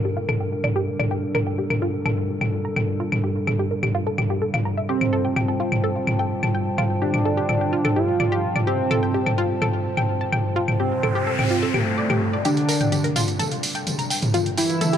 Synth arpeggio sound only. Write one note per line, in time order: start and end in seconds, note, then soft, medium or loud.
0.05 0.10 G4 medium
0.17 0.24 F4 medium
0.29 0.32 A4 medium
0.40 0.43 G4 medium
0.64 0.71 D5 medium
0.76 0.81 G4 loud
0.99 1.04 D5 medium
1.11 1.16 G4 medium
1.35 1.42 A#4 loud
1.47 1.52 G5 medium
1.58 1.63 G4 medium
1.70 1.73 A#4 medium
1.82 1.87 F4 loud
2.06 2.13 A4 medium
2.41 2.46 G5 medium
2.65 2.70 A#5 medium
2.76 2.84 G5 medium
3.00 3.08 F4 medium
3.24 3.27 G4 medium
3.47 3.50 A4 medium
3.59 3.64 G4 medium
3.71 3.76 A#4 medium
3.83 3.88 G4 medium
3.95 4.02 F4 loud
4.07 4.10 A4 loud
4.18 4.23 G4 medium
4.30 4.35 G4 medium
4.42 4.47 A4 medium
4.54 4.59 F4 medium
4.65 4.73 A#5 medium
4.77 4.82 E5 medium
4.89 4.94 G4 loud
5.13 5.20 A4 loud
5.25 5.30 G5 medium
5.36 5.41 G4 medium
5.48 5.51 A4 medium
5.60 5.65 F4 medium
5.84 5.91 A4 medium
6.19 6.24 G5 medium
6.43 6.48 A5 medium
6.55 6.62 G5 medium
6.78 6.86 F4 loud
7.02 7.05 G4 medium
7.25 7.28 A4 medium
7.37 7.42 G4 loud
7.49 7.54 A4 medium
7.61 7.66 G4 medium
7.73 7.80 F4 medium
7.85 7.88 A4 loud
7.96 7.99 G4 medium
8.20 8.27 D5 medium
8.32 8.37 G4 loud
8.56 8.60 D5 medium
8.67 8.72 G4 medium
8.91 8.98 A4 loud
9.03 9.08 G5 medium
9.14 9.19 G4 medium
9.26 9.29 A4 medium
9.38 9.43 F4 loud
9.62 9.69 A4 medium
9.97 10.02 G5 medium
10.21 10.26 A5 medium
10.32 10.40 G5 medium
10.56 10.64 F4 medium
10.80 10.83 G4 medium
11.03 11.06 A4 medium
11.15 11.20 G4 loud
11.27 11.32 A4 medium
11.39 11.44 G4 medium
11.51 11.58 F4 medium
11.63 11.66 A4 loud
11.74 11.77 G4 medium
11.98 12.05 D5 medium
12.10 12.15 G4 medium
12.33 12.38 D5 medium
12.45 12.50 G4 loud
12.69 12.76 A#4 loud
12.81 12.86 G5 medium
12.92 12.97 G4 medium
13.04 13.07 A#4 medium
13.16 13.21 F4 loud
13.39 13.47 A4 loud
13.75 13.80 G5 medium
13.99 14.04 A#5 medium
14.10 14.18 G5 medium
14.34 14.42 F4 loud
14.58 14.61 G4 medium
14.81 14.84 A4 medium
14.93 14.98 G4 loud